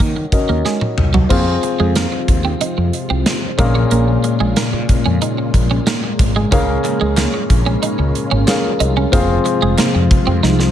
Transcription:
Already playing: grand piano D#3 C#4 F#4 A#4 D#5
0.00 fretless electric bass D#3, clean electric guitar A#3, kick, closed hi-hat
0.16 muted clean electric guitar stroke
0.32 grand piano C#4 F#4 A#4 D#5, kick, closed hi-hat
0.49 fretless electric bass D#2, clean electric guitar A#3
0.65 clean electric guitar G#3, snare
0.81 muted clean electric guitar stroke, high tom
0.98 fretless electric bass C2, mid tom
1.14 clean electric guitar F#3, floor tom
1.29 fretless electric bass F2, string machine C3 F3 G#3 F4, clean electric guitar A#3, grand piano C4 F4 G#4 F5, kick, crash
1.63 muted clean electric guitar stroke, closed hi-hat
1.80 fretless electric bass F2, clean electric guitar G#3
1.95 clean electric guitar A#3, snare, closed hi-hat
2.12 muted clean electric guitar stroke
2.28 fretless electric bass D#2, kick, closed hi-hat
2.45 clean electric guitar C4
2.61 clean electric guitar D#4, closed hi-hat
2.77 fretless electric bass F2, muted clean electric guitar stroke
2.93 closed hi-hat
3.10 fretless electric bass C2, clean electric guitar C4
3.26 muted clean electric guitar stroke, snare, closed hi-hat
3.58 fretless electric bass A#1, grand piano A#2 C#4 G#4 A#4 F5, string machine C#3 A#3, clean electric guitar D#4, kick, closed hi-hat
3.75 clean electric guitar C#4
3.91 fretless electric bass A#1, clean electric guitar A#3, closed hi-hat
4.24 muted clean electric guitar stroke, closed hi-hat
4.40 fretless electric bass A#1, clean electric guitar G#3
4.56 clean electric guitar A#3, snare, closed hi-hat
4.73 fretless electric bass A#2, muted clean electric guitar stroke
4.89 kick, closed hi-hat
5.06 fretless electric bass F2, clean electric guitar C#4
5.22 clean electric guitar D#4, closed hi-hat
5.38 muted clean electric guitar stroke
5.54 fretless electric bass A#1, kick, closed hi-hat
5.71 clean electric guitar C#4
5.87 clean electric guitar A#3, snare, closed hi-hat
6.04 muted clean electric guitar stroke
6.19 fretless electric bass G#1, kick, closed hi-hat
6.36 clean electric guitar G#3
6.51 fretless electric bass C#2, grand piano C#3 C#4 G#4 A#4 F5, clean electric guitar C#4, string machine C#4 F4, kick, closed hi-hat
6.84 muted clean electric guitar stroke, clap, closed hi-hat
7.01 fretless electric bass C#2, clean electric guitar G#3
7.17 clean electric guitar A#3, snare, clap, closed hi-hat
7.34 muted clean electric guitar stroke
7.50 fretless electric bass A#1, kick, closed hi-hat
7.66 clean electric guitar C#4
7.83 clean electric guitar D#4, closed hi-hat
7.99 fretless electric bass C#2, muted clean electric guitar stroke
8.15 closed hi-hat
8.31 fretless electric bass G#1, clean electric guitar C#4
8.47 grand piano C#4 G#4 A#4 F5, muted clean electric guitar stroke, snare, clap, closed hi-hat
8.80 fretless electric bass C2, clean electric guitar D#4, closed hi-hat
8.97 clean electric guitar C#4
9.12 fretless electric bass F1, string machine C3 F3 G#3, clean electric guitar A#3, grand piano C4 F4 G#4 F5, kick, closed hi-hat
9.46 muted clean electric guitar stroke, clap, closed hi-hat
9.62 fretless electric bass F1, clean electric guitar G#3
9.78 clean electric guitar A#3, snare, clap, closed hi-hat
9.95 fretless electric bass F2, muted clean electric guitar stroke
10.11 kick, closed hi-hat
10.27 fretless electric bass F2, clean electric guitar C4
10.43 fretless electric bass C2, clean electric guitar D#4, snare
10.60 muted clean electric guitar stroke, snare

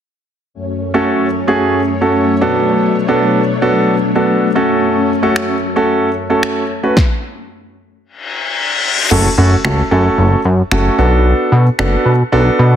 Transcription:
0.54 string machine F#2 F#3 A3 C#4 C#5
0.94 grand piano A3 C#4 F#4 A4
1.47 grand piano A3 C#4 F#4 G#4
2.01 grand piano A3 C#4 F#4 A4
2.41 string machine B2 D4, grand piano B3 D4 F#4 A4
3.08 grand piano B3 D4 F#4 A4
3.62 grand piano B3 D4 F#4 A4
4.15 grand piano B3 D4 F#4 A4
4.55 string machine F#2 C#4, grand piano A3 C#4 F#4 A4
5.23 grand piano A3 C#4 F#4 A4
5.36 finger snap
5.76 grand piano A3 C#4 F#4 A4
6.30 grand piano A3 C#4 F#4 A4
6.43 finger snap
6.83 grand piano A3 C#4 F#4 B4
6.97 kick, snare
8.04 reverse cymbal
9.11 analog synth bass F#1, grand piano A3 C#4 F#4 A4, crash, impact
9.38 analog synth bass F#2, grand piano A3 C#4 F#4 A4
9.64 analog synth bass C#2, grand piano A3 C#4 F#4 A4, finger snap
9.91 analog synth bass F#2, grand piano A3 C#4 F#4 A4
10.18 analog synth bass F#1
10.45 analog synth bass F#2
10.71 analog synth bass F#1, grand piano A3 C#4 F#4 A4, finger snap
10.98 analog synth bass B1, grand piano B3 D4 F#4 A4
11.52 analog synth bass B2
11.79 analog synth bass F#1, grand piano B3 D4 F#4 A4, finger snap
12.05 analog synth bass B2
12.32 analog synth bass B1, grand piano B3 D4 F#4 A4
12.59 analog synth bass B2

